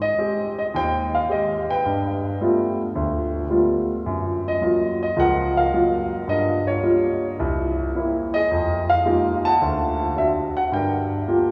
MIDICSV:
0, 0, Header, 1, 2, 480
1, 0, Start_track
1, 0, Tempo, 555556
1, 1591, Time_signature, 4, 2, 24, 8
1, 9947, End_track
2, 0, Start_track
2, 0, Title_t, "Grand piano"
2, 0, Program_c, 0, 0
2, 0, Note_on_c, 0, 44, 59
2, 14, Note_on_c, 0, 75, 91
2, 98, Note_off_c, 0, 44, 0
2, 157, Note_on_c, 0, 56, 48
2, 162, Note_on_c, 0, 60, 46
2, 164, Note_on_c, 0, 67, 56
2, 455, Note_off_c, 0, 75, 0
2, 500, Note_off_c, 0, 56, 0
2, 503, Note_off_c, 0, 60, 0
2, 504, Note_off_c, 0, 67, 0
2, 506, Note_on_c, 0, 75, 75
2, 549, Note_off_c, 0, 75, 0
2, 640, Note_on_c, 0, 39, 64
2, 658, Note_on_c, 0, 79, 94
2, 665, Note_on_c, 0, 72, 64
2, 954, Note_off_c, 0, 79, 0
2, 991, Note_on_c, 0, 77, 79
2, 1055, Note_off_c, 0, 39, 0
2, 1115, Note_on_c, 0, 56, 46
2, 1119, Note_on_c, 0, 60, 45
2, 1122, Note_on_c, 0, 67, 53
2, 1129, Note_off_c, 0, 77, 0
2, 1136, Note_on_c, 0, 75, 74
2, 1432, Note_off_c, 0, 75, 0
2, 1459, Note_off_c, 0, 56, 0
2, 1461, Note_off_c, 0, 60, 0
2, 1462, Note_off_c, 0, 67, 0
2, 1473, Note_on_c, 0, 79, 84
2, 1479, Note_on_c, 0, 71, 59
2, 1573, Note_off_c, 0, 72, 0
2, 1602, Note_on_c, 0, 43, 57
2, 2016, Note_off_c, 0, 43, 0
2, 2081, Note_on_c, 0, 55, 47
2, 2082, Note_on_c, 0, 57, 46
2, 2083, Note_on_c, 0, 59, 46
2, 2088, Note_on_c, 0, 65, 53
2, 2382, Note_off_c, 0, 79, 0
2, 2385, Note_off_c, 0, 71, 0
2, 2422, Note_off_c, 0, 55, 0
2, 2422, Note_off_c, 0, 57, 0
2, 2422, Note_off_c, 0, 59, 0
2, 2425, Note_off_c, 0, 65, 0
2, 2552, Note_on_c, 0, 38, 67
2, 2969, Note_off_c, 0, 38, 0
2, 3022, Note_on_c, 0, 55, 50
2, 3025, Note_on_c, 0, 57, 44
2, 3026, Note_on_c, 0, 59, 42
2, 3030, Note_on_c, 0, 65, 54
2, 3372, Note_off_c, 0, 55, 0
2, 3373, Note_off_c, 0, 57, 0
2, 3374, Note_off_c, 0, 59, 0
2, 3376, Note_off_c, 0, 65, 0
2, 3509, Note_on_c, 0, 42, 61
2, 3871, Note_on_c, 0, 75, 80
2, 3927, Note_off_c, 0, 42, 0
2, 3987, Note_on_c, 0, 54, 50
2, 3988, Note_on_c, 0, 58, 44
2, 3992, Note_on_c, 0, 65, 53
2, 4302, Note_off_c, 0, 75, 0
2, 4334, Note_off_c, 0, 54, 0
2, 4334, Note_off_c, 0, 58, 0
2, 4336, Note_off_c, 0, 65, 0
2, 4343, Note_on_c, 0, 75, 79
2, 4461, Note_on_c, 0, 37, 66
2, 4462, Note_on_c, 0, 53, 64
2, 4484, Note_off_c, 0, 75, 0
2, 4489, Note_on_c, 0, 78, 93
2, 4496, Note_on_c, 0, 70, 71
2, 4813, Note_off_c, 0, 70, 0
2, 4816, Note_on_c, 0, 77, 88
2, 4819, Note_off_c, 0, 78, 0
2, 4826, Note_on_c, 0, 70, 62
2, 4883, Note_off_c, 0, 37, 0
2, 4883, Note_off_c, 0, 53, 0
2, 4952, Note_on_c, 0, 54, 48
2, 4954, Note_on_c, 0, 58, 46
2, 4958, Note_on_c, 0, 65, 53
2, 5296, Note_off_c, 0, 54, 0
2, 5297, Note_off_c, 0, 58, 0
2, 5299, Note_off_c, 0, 65, 0
2, 5406, Note_off_c, 0, 70, 0
2, 5421, Note_on_c, 0, 43, 58
2, 5436, Note_on_c, 0, 75, 83
2, 5453, Note_on_c, 0, 70, 56
2, 5454, Note_off_c, 0, 77, 0
2, 5765, Note_on_c, 0, 73, 81
2, 5773, Note_off_c, 0, 70, 0
2, 5773, Note_off_c, 0, 75, 0
2, 5786, Note_on_c, 0, 70, 47
2, 5843, Note_off_c, 0, 43, 0
2, 5901, Note_on_c, 0, 55, 50
2, 5905, Note_on_c, 0, 58, 44
2, 5909, Note_on_c, 0, 65, 54
2, 6250, Note_off_c, 0, 55, 0
2, 6252, Note_off_c, 0, 58, 0
2, 6254, Note_off_c, 0, 65, 0
2, 6356, Note_off_c, 0, 73, 0
2, 6366, Note_off_c, 0, 70, 0
2, 6390, Note_on_c, 0, 36, 67
2, 6807, Note_off_c, 0, 36, 0
2, 6870, Note_on_c, 0, 58, 52
2, 6876, Note_on_c, 0, 60, 44
2, 6876, Note_on_c, 0, 64, 54
2, 7205, Note_on_c, 0, 75, 93
2, 7215, Note_off_c, 0, 58, 0
2, 7218, Note_off_c, 0, 60, 0
2, 7218, Note_off_c, 0, 64, 0
2, 7222, Note_on_c, 0, 68, 58
2, 7353, Note_on_c, 0, 41, 63
2, 7686, Note_on_c, 0, 77, 97
2, 7696, Note_off_c, 0, 75, 0
2, 7769, Note_off_c, 0, 41, 0
2, 7822, Note_on_c, 0, 56, 52
2, 7822, Note_on_c, 0, 58, 46
2, 7827, Note_on_c, 0, 63, 47
2, 7828, Note_on_c, 0, 65, 44
2, 7833, Note_on_c, 0, 67, 55
2, 8136, Note_off_c, 0, 68, 0
2, 8166, Note_on_c, 0, 81, 102
2, 8171, Note_off_c, 0, 56, 0
2, 8171, Note_off_c, 0, 58, 0
2, 8173, Note_off_c, 0, 63, 0
2, 8174, Note_off_c, 0, 65, 0
2, 8176, Note_off_c, 0, 67, 0
2, 8176, Note_off_c, 0, 77, 0
2, 8185, Note_on_c, 0, 78, 64
2, 8306, Note_on_c, 0, 38, 70
2, 8726, Note_off_c, 0, 38, 0
2, 8781, Note_on_c, 0, 60, 49
2, 8784, Note_on_c, 0, 62, 43
2, 8789, Note_on_c, 0, 66, 55
2, 8796, Note_on_c, 0, 76, 77
2, 8810, Note_off_c, 0, 81, 0
2, 8870, Note_off_c, 0, 76, 0
2, 9097, Note_off_c, 0, 78, 0
2, 9129, Note_on_c, 0, 78, 82
2, 9131, Note_off_c, 0, 60, 0
2, 9132, Note_off_c, 0, 62, 0
2, 9134, Note_off_c, 0, 66, 0
2, 9173, Note_off_c, 0, 78, 0
2, 9260, Note_on_c, 0, 43, 61
2, 9275, Note_on_c, 0, 79, 78
2, 9289, Note_on_c, 0, 70, 54
2, 9683, Note_off_c, 0, 43, 0
2, 9747, Note_on_c, 0, 58, 50
2, 9749, Note_on_c, 0, 65, 45
2, 9756, Note_on_c, 0, 67, 53
2, 9947, Note_off_c, 0, 58, 0
2, 9947, Note_off_c, 0, 65, 0
2, 9947, Note_off_c, 0, 67, 0
2, 9947, Note_off_c, 0, 70, 0
2, 9947, Note_off_c, 0, 79, 0
2, 9947, End_track
0, 0, End_of_file